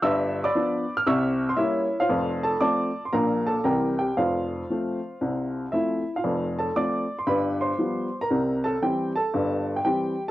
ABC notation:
X:1
M:4/4
L:1/16
Q:"Swing" 1/4=116
K:F
V:1 name="Upright piano"
[ee']3 [d=bd']4 f' [e_d'e']3 c' [E_de]3 [Fcf]- | [Fcf]2 [Aa]2 [dad']3 c' [Bfb]2 [Aa]2 [Bgb]2 [Gg]2 | [Fcf]12 [Ee]3 [Ff]- | [Ff]2 [Aa]2 [dd']3 c' [=B=b]2 [cc']4- [cc'] [_B_b]- |
[Bb]2 [Aa]2 [Gg]2 [Aa]4- [Aa] g [Gg]3 z |]
V:2 name="Upright piano" clef=bass
[G,,,G,,]4 [F,=B,D]4 [C,,C,]4 [G,_B,_D]4 | [F,,,F,,]4 [F,A,C]4 [B,,,B,,F,B,D]4 [C,,C,E,G,C]4 | [F,,,F,,]4 [F,A,C]4 [C,,C,]4 [F,A,C]4 | [F,,,F,,]4 [F,A,C]4 [G,,,G,,]4 [F,G,=B,]4 |
[C,,C,]4 [E,G,C]4 [G,,,G,,]4 [E,G,C]4 |]